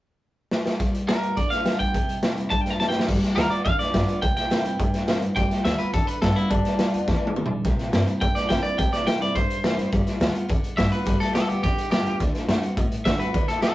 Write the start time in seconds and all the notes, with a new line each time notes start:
0.51 snare
0.66 snare
0.80 G3, kick, snare, closed hi-hat
0.95 closed hi-hat
1.08 G3 B3 F4 A#4, snare, closed hi-hat
1.23 closed hi-hat
1.37 D3 D5, kick, closed hi-hat
1.50 F5, snare, closed hi-hat
1.65 G3 B3 F4, snare, closed hi-hat
1.79 G5, kick, closed hi-hat
1.94 C3, kick, closed hi-hat
2.09 closed hi-hat
2.22 E3 A#3 C4 E4, snare, closed hi-hat
2.37 C4 E4, closed hi-hat
2.50 G2 A5, kick, closed hi-hat
2.61 G5
2.66 snare, closed hi-hat
2.70 A5
2.80 E3 A#3 C4 E4 A5, snare
2.89 G5, snare
2.94 C4 E4
3.00 snare
3.08 G1 G3, kick, snare, crash
3.23 snare, closed hi-hat
3.36 D2 G3 B3 F4 A#4, snare, closed hi-hat
3.50 B3 F4 D5, muted upright bass stroke, closed hi-hat
3.65 E2 D3 F5, kick, closed hi-hat
3.79 D5, muted upright bass stroke, snare, closed hi-hat
3.94 G2 G3 B3 F4, kick, snare, closed hi-hat
4.07 B3 F4, muted upright bass stroke, closed hi-hat
4.22 C2 C3 G5, kick, closed hi-hat
4.37 G5, snare, closed hi-hat
4.50 E2 E3 A#3 C4 E4, snare, closed hi-hat
4.64 G2 C4 E4, closed hi-hat
4.79 G2 A2, kick, closed hi-hat
4.94 snare, closed hi-hat
5.07 C3 E3 A#3 C4 E4, snare, closed hi-hat
5.22 A2 C4 E4, closed hi-hat
5.36 G1 G3 G5, kick, snare, closed hi-hat
5.51 muted upright bass stroke, snare, closed hi-hat
5.65 D2 G3 B3 F4 E5, snare, closed hi-hat
5.78 B3 F4 B4, muted upright bass stroke, closed hi-hat
5.93 E2 D3 A4, kick, closed hi-hat
6.07 B4, muted upright bass stroke, closed hi-hat
6.22 G2 G3 B3 F4 A4, kick, snare, closed hi-hat
6.36 E4, muted upright bass stroke, closed hi-hat
6.50 G1 G3 D4, kick, closed hi-hat
6.65 muted upright bass stroke, snare, closed hi-hat
6.79 B1 G3 B3 F4, snare, closed hi-hat
6.93 D2 B3 F4, closed hi-hat
7.08 E2 E3, kick, snare
7.27 high tom
7.36 G2 D3, mid tom
7.46 mid tom
7.51 E2
7.65 C2 C3, kick, snare, closed hi-hat
7.79 muted upright bass stroke, snare, closed hi-hat
7.92 G2 E3 A#3 C4 E4, snare, closed hi-hat
8.07 C4 E4, closed hi-hat
8.21 G2 A2 G5, kick, closed hi-hat
8.35 D5, muted upright bass stroke, snare, closed hi-hat
8.49 C3 E3 A#3 C4 E4 G5, kick, snare, closed hi-hat
8.63 C4 E4 D5, muted upright bass stroke, closed hi-hat
8.78 C2 C3 G5, kick, closed hi-hat
8.93 D5, snare, closed hi-hat
9.06 E2 E3 A#3 C4 E4 G5, snare, closed hi-hat
9.20 G2 C4 E4 D5, closed hi-hat
9.35 G2 A2 C5, kick, closed hi-hat
9.49 muted upright bass stroke, closed hi-hat
9.63 C3 E3 A#3 C4 E4, snare, closed hi-hat
9.77 A2 C4 E4, snare, closed hi-hat
9.92 G1 G3, kick, snare, closed hi-hat
10.07 snare, closed hi-hat
10.20 D2 G3 B3 F4, snare, closed hi-hat
10.34 B3 F4, closed hi-hat
10.49 E2 D3, kick, closed hi-hat
10.63 muted upright bass stroke, closed hi-hat
10.77 G2 G3 B3 F4 E5, kick, snare, closed hi-hat
10.91 B3 F4 B4, snare, closed hi-hat
11.06 G1 G3, kick, snare, closed hi-hat
11.20 A4, muted upright bass stroke, snare, closed hi-hat
11.34 B1 G3 B3 F4 A4, snare, closed hi-hat
11.48 D2 G4, closed hi-hat
11.63 E2 D3 G4, kick, closed hi-hat
11.77 muted upright bass stroke, closed hi-hat
11.91 G2 G3 B3 F4 G4, snare, closed hi-hat
12.06 E2 B3 F4, closed hi-hat
12.20 D2 D3, kick, snare, closed hi-hat
12.35 snare, closed hi-hat
12.48 A2 D3 A3 C4 F#4, snare, closed hi-hat
12.62 C4 F#4, muted upright bass stroke, closed hi-hat
12.77 A2 B2, kick, closed hi-hat
12.92 muted upright bass stroke, closed hi-hat
13.05 D3 A3 C4 F#4 E5, kick, snare, closed hi-hat
13.20 C4 F#4 B4, muted upright bass stroke, snare, closed hi-hat
13.34 D2 D3, kick, closed hi-hat
13.48 A4, muted upright bass stroke, snare, closed hi-hat
13.62 F#2 D3 A3 C4 F#4 A4, snare, closed hi-hat